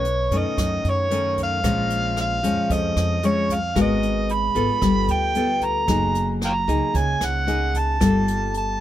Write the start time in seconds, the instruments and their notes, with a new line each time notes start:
Already playing: upright bass B1, nylon-string guitar B2, harmonica C#5
0.05 closed hi-hat
0.31 upright bass F#2, nylon-string guitar D#3 A3 C#4, kick, closed hi-hat
0.37 harmonica D#5
0.57 upright bass F#2, nylon-string guitar F#2, kick, cross-stick, closed hi-hat
0.84 upright bass F#2, closed hi-hat
0.89 harmonica C#5
1.11 nylon-string guitar D#3 A3 C#4, closed hi-hat
1.37 kick, closed hi-hat
1.43 harmonica F5
1.64 upright bass A#1, nylon-string guitar A#2 F3 G#3 C#4, kick, cross-stick, closed hi-hat
1.90 closed hi-hat
2.17 cross-stick, closed hi-hat
2.21 harmonica F5
2.43 upright bass F2, nylon-string guitar F3 G#3 C#4, kick, closed hi-hat
2.70 upright bass F2, nylon-string guitar F2, harmonica D#5, kick, closed hi-hat
2.96 upright bass F2, cross-stick, closed hi-hat
3.23 nylon-string guitar F3 G#3 C#4, harmonica C#5, closed hi-hat
3.49 kick, closed hi-hat
3.54 harmonica F5
3.75 upright bass G#1, nylon-string guitar G#3 B3 F#4 A#4, kick, cross-stick, closed hi-hat
3.82 harmonica D#5
4.03 closed hi-hat
4.29 harmonica B5, closed hi-hat
4.55 upright bass G#1, nylon-string guitar B3 F4 A4, kick, closed hi-hat
4.81 upright bass G1, nylon-string guitar G3, kick, cross-stick, closed hi-hat
5.08 upright bass D2, harmonica G5, closed hi-hat
5.35 nylon-string guitar B3 F4 A4, closed hi-hat
5.61 harmonica A#5, kick, closed hi-hat
5.88 upright bass F#1, nylon-string guitar F#3 A#3 D#4 G#4, kick, cross-stick, closed hi-hat
6.15 closed hi-hat
6.42 harmonica F5 G5 A#5, cross-stick, closed hi-hat
6.67 upright bass C#2, nylon-string guitar A#3 D#4 G#4, kick, closed hi-hat
6.94 upright bass C#2, nylon-string guitar C#3, kick, closed hi-hat
6.98 harmonica G#5
7.21 upright bass C#2, harmonica F#5, cross-stick, closed hi-hat
7.47 nylon-string guitar A#3 D#4 G#4, closed hi-hat
7.74 harmonica A5, kick, closed hi-hat
8.00 upright bass G1, nylon-string guitar G3 A#3 F4 A4, kick, cross-stick, closed hi-hat
8.28 closed hi-hat
8.54 harmonica A5, closed hi-hat